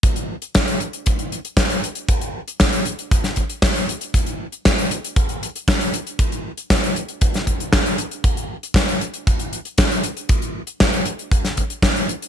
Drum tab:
HH |xx-xxxxxxxxxxxxx|xx-xxxxxxxxxxxxx|xx-xxxxxxxxxxxxx|xx-xxxxxxxxxxxxx|
SD |----o-------o---|----o----o--o---|----o-------o---|----o----o--o---|
BD |o---o---o---o---|o---o---o-o-o---|o---o---o---o---|o---o---o-o-o---|

HH |xx-xxxxxxxxxxxxx|xx-xxxxxxxxxxxxx|
SD |----o-------o---|----o----o--o---|
BD |o---o---o---o---|o---o---o-o-o---|